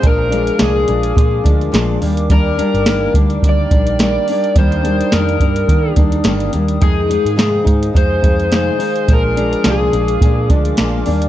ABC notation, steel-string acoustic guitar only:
X:1
M:4/4
L:1/8
Q:"Swing 16ths" 1/4=106
K:Eb
V:1 name="Steel-string acoustic guitar" clef=bass
[B,,F,A,D] [F,A,D] [B,,F,A,D] [F,A,D] [B,,F,A,D] [F,A,D] [B,,F,A,D] [G,B,D] | [E,G,B,D] [G,B,D] [E,G,B,D] [G,B,D] [E,G,B,D] [G,B,D] [E,G,B,D] [G,B,D] | [E,G,B,D] [G,B,D] [E,G,B,D] [G,B,D] [E,G,B,D] [G,B,D] [E,G,B,D] [G,B,D] | [F,,C,E,A,E] [E,A,E] [F,,C,E,A,E] [E,A,E] [C,E,A,E] [E,A,E] [F,,C,E,A,E] [E,A,E] |
[B,,F,A,D] [F,A,D] [B,,F,A,D] [F,A,D] [B,,F,A,D] [F,A,D] [B,,F,A,D] [G,B,D] |]